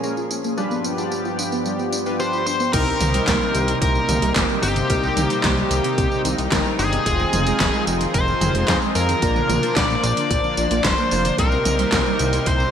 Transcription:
Already playing: A#2 F3 C#4 G#4
0.03 C#4 F4 G#4 A#4, tambourine
0.17 F4, tambourine
0.31 C#4, tambourine
0.44 A#3, tambourine
0.57 G2 G3 B3 D4 F4 G4 B4, tambourine
0.71 B3, tambourine
0.84 D4, tambourine
0.98 D4 F4 G4 D5, tambourine
1.12 G4, tambourine
1.25 F4, tambourine
1.39 D4, tambourine
1.52 B3, tambourine
1.66 G3, tambourine
1.79 B3, tambourine
1.93 D4, tambourine
2.06 D4 F4 G4 B4, tambourine
2.19 D4 F4 G4 B4 C5, tambourine
2.33 F4, tambourine
2.47 D4 C5, tambourine
2.60 B3, tambourine
2.73 C2 A#2 C3 G3 A#3 C4 D#4 G4 A#4, kick, closed hi-hat, crash, tambourine
2.87 C3, tambourine
3.00 C2 D#3, closed hi-hat, mid tom, tambourine
3.14 G3 C4 D#4 G4 C5, closed hi-hat, tambourine
3.28 C2 A#3, kick, snare, clap, closed hi-hat, tambourine
3.41 G3, tambourine
3.55 C2 D#3, closed hi-hat, tambourine
3.68 C3, closed hi-hat, tambourine
3.82 C2 A#2 A#4, kick, closed hi-hat, tambourine
3.95 C3, tambourine
4.09 C2 D#3, closed hi-hat, mid tom, tambourine
4.22 C2 G3, closed hi-hat, tambourine
4.35 G1 A#3 C4 D#4 G4 A#4, kick, snare, clap, closed hi-hat, tambourine
4.49 G3, tambourine
4.62 G1 D#3 C4 D#4 G4 C5, open hi-hat, tambourine
4.76 C3, closed hi-hat, tambourine
4.90 C2 A#2 C4 D#4 G4 A#4, kick, closed hi-hat, tambourine
5.03 C3, tambourine
5.17 C2 D#3, closed hi-hat, mid tom, tambourine
5.30 G3 C4 D#4 G4 C5, closed hi-hat, tambourine
5.44 C2 A#3, kick, snare, clap, closed hi-hat, tambourine
5.57 G3, tambourine
5.71 C2 D#3, closed hi-hat, tambourine
5.84 C3, closed hi-hat, tambourine
5.98 C2 A#2, kick, closed hi-hat, tambourine
6.12 C3, tambourine
6.25 C2 D#3, closed hi-hat, tambourine
6.38 C2 G3, closed hi-hat, tambourine
6.52 G1 A#3 C4 D#4 G4 A#4, kick, snare, clap, closed hi-hat, tambourine
6.65 G3, tambourine
6.79 G1 D#3 C4 D#4 G4 G#4 C5, open hi-hat, tambourine
6.93 C3, closed hi-hat, tambourine
7.06 F1 C3 F3 C4 D#4 F4 G#4, kick, closed hi-hat, tambourine
7.20 D#3, tambourine
7.33 F1 F3, closed hi-hat, mid tom, tambourine
7.47 G#3 C4 D#4 F4 A#4, closed hi-hat, tambourine
7.60 F1 C4, kick, snare, clap, closed hi-hat, tambourine
7.74 G#3, tambourine
7.87 F1 F3, closed hi-hat, tambourine
8.01 D#3, closed hi-hat, tambourine
8.14 F1 C3 C5, kick, closed hi-hat, tambourine
8.28 D#3, tambourine
8.41 F1 F3, closed hi-hat, mid tom, tambourine
8.55 F1 G#3, closed hi-hat, tambourine
8.68 F2 C4 D#4 F4 G#4 C5, kick, snare, clap, closed hi-hat, tambourine
8.82 G#3, tambourine
8.95 F2 F3 C4 D#4 F4 A#4, open hi-hat, tambourine
9.09 D#3, closed hi-hat, tambourine
9.22 A#1 A#2 A#3 D4 F4 A#4, kick, closed hi-hat, tambourine
9.36 D3, mid tom, tambourine
9.49 A#1 F3, closed hi-hat, mid tom, tambourine
9.63 A#3 D4 F4 C5, closed hi-hat, tambourine
9.77 A#1 D4 D5, kick, snare, clap, closed hi-hat, tambourine
9.90 A#3, snare, tambourine
10.03 A#1 F3 D5, closed hi-hat, tambourine
10.17 D3, closed hi-hat, tambourine
10.30 A#1 A#2, kick, closed hi-hat, tambourine
10.44 D3, tambourine
10.57 A#1 F3, closed hi-hat, tambourine
10.71 A#1 A#3, closed hi-hat, tambourine
10.85 F1 D4 C5, kick, snare, clap, closed hi-hat, tambourine
10.98 A#3, tambourine
11.11 F1 F3 A#3 D4 F4 C5, open hi-hat, tambourine
11.25 D3, closed hi-hat, tambourine
11.38 C2 A#2 C3 G3 A#3 C4 D#4 G4 A#4, kick, closed hi-hat, tambourine
11.52 C3, tambourine
11.65 C2 D#3, closed hi-hat, mid tom, tambourine
11.79 G3 C4 D#4 G4 C5, closed hi-hat, tambourine
11.92 C2 A#3, kick, snare, clap, closed hi-hat, tambourine
12.06 G3, tambourine
12.19 C2 D#3, closed hi-hat, tambourine
12.33 C3, closed hi-hat, tambourine
12.46 C2 A#2 C5, kick, closed hi-hat, tambourine
12.60 C3, tambourine

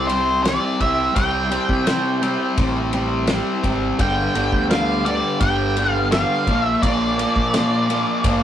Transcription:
Already playing: C2
0.07 C3 G3 C4 C5, ride
0.43 C3 G3 C4 D5, snare, ride
0.80 C2 C3 G3 C4 E5, kick, ride
1.14 C2 C3 G3 C4 G5, kick, ride
1.51 C3 G3 C4, ride
1.69 C3, kick
1.86 C3 G3 C4, snare, ride
2.21 C3 G3 C4, ride
2.58 A1 C3 G3 C4, kick, ride
2.93 C3 G3 C4, ride
3.27 C3 G3 C4, snare, ride
3.63 G#1 C3 G3 C4, kick, ride
3.99 G1 G2 D3 G3 C4 G#4 D#5 G5, kick, ride
4.21 B3 G4 D5
4.35 G1 G2 D3 G3, ride
4.52 D2, kick
4.70 G2 D3 G3 F5, snare, ride
5.05 G2 D3 G3 D5, ride
5.41 G1 G2 D3 G3 G5, kick, ride
5.77 G2 D3 G3, ride
5.91 F5
6.12 G2 D3 G3 F5, snare, ride
6.45 A#1 A#2 A#3 F4 D5, kick, ride
6.49 F3 A#3
6.63 E5
6.82 A#1 A#2 F3 A#3 D5, kick, ride
7.18 A#2 F3 A#3, ride
7.36 A#2, kick
7.54 A#2 F3 A#3, snare, ride
7.90 A#2 F3 A#3, ride
8.24 G1 A#2 F3 A#3, kick, ride

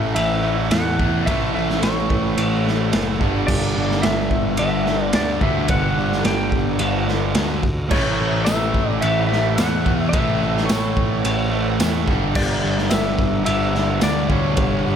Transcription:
Already playing: A1 A2 E3 A3 E5
0.15 A1 E5, ride bell
0.43 A2 E3 A3
0.70 E2 A2 E3 A3 F#5, snare, ride bell
0.99 A2 E3 A3, kick
1.25 A1 A2 E3 A3 E5, kick, ride bell
1.55 A1 E5
1.70 snare
1.82 A1 C#5, snare, ride bell
2.10 kick
2.38 A1, ride bell
2.63 A2 E3 A3, snare
2.92 F#1 A2 E3 A3, snare, ride bell
3.18 G1 G2 D3 G3, kick
3.47 G1 D5, kick, crash
3.77 G1
3.91 snare
4.02 G1 E5, snare, ride bell
4.31 kick
4.57 G1 G2 D3 E5, ride bell
4.62 G3
4.85 G2 D3 G3, snare
5.04 D5
5.13 D2 G2 D3 G3 D5, snare, ride bell
5.40 G2 D3 G3 E5, kick
5.68 G1 F#5, kick, ride bell
5.98 G1
6.12 snare
6.25 G1 G5, snare, ride bell
6.52 kick
6.79 G1 G2 D3 G3, ride bell
7.06 G2 D3 G3, snare
7.35 D2 G2 D3 G3, snare, ride bell
7.63 kick
7.89 A1 A2 E3 C#5, kick, crash
7.93 A3
8.20 A1
8.45 A1 E5, snare, ride bell, tambourine
8.74 kick
9.01 A1 E5, ride bell
9.27 E3 A3 E5
9.32 A2, snare
9.56 E2 A2 E3 A3 F#5, snare, ride bell, tambourine
9.85 A2 E3 A3, kick
10.09 A2 E5
10.13 A1 E3 A3, kick, ride bell
10.42 A1
10.57 snare
10.65 C#5
10.69 A1, snare, ride bell, tambourine
10.97 kick
11.25 A1, ride bell
11.50 E3 A3
11.55 A2
11.79 E2 A2 E3 A3, snare, ride bell, tambourine
12.06 G1 G2 D3 G3, kick
12.35 G1 D5, kick, crash
12.64 G1
12.78 snare
12.90 G1 E5, snare, ride bell, tambourine
13.19 kick
13.44 G1 G2 D3 E5, ride bell
13.48 G3
13.72 G2 D3 G3, snare
14.01 D2 G2 D3 G3 D5, snare, ride bell, tambourine
14.28 G2 D3 G3, kick
14.32 C#5
14.57 G1, kick, ride bell
14.86 G1

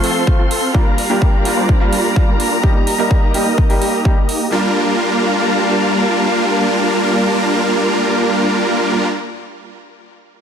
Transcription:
Already playing: F3 A3 C4 F4 A4 C5 F5 C6
0.04 C4 F4 A4, open hi-hat
0.27 F3 A3 C4 F4, kick
0.39 C4 F4 A4
0.51 open hi-hat
0.74 G3 A#3 D4 F4 G4 A#4 D5 A#5, kick
0.98 open hi-hat
1.09 G3 A#3 D4 F4 G4 A#4
1.22 kick
1.45 G3 A#3 D4 F4, open hi-hat
1.57 G3 A#3 D4 F4 C5
1.69 kick
1.80 G3 A#3 D4 F4
1.93 G3 A#3 D4 F4 A#4, open hi-hat
2.16 G3 A#3 D4 F4, kick
2.28 G3 A#3 D4 F4 A#4
2.40 open hi-hat
2.63 G3 A#3 D#4 G4 A#4 D#5, kick
2.87 open hi-hat
2.98 G3 A#3 D#4 G4 A#4
3.11 kick
3.34 G3 A#3 D#4 G4, open hi-hat
3.46 A#3 D#4 A#4
3.58 kick
3.69 G3 A#3 D#4 G4, open hi-hat
3.82 A#3 D#4 G4, open hi-hat
4.05 G3 A#3 D#4 G4, kick
4.17 A#3 D#4 G4
4.29 open hi-hat
4.51 G3 A#3 D4 F4 G4 A#4 F5 A5

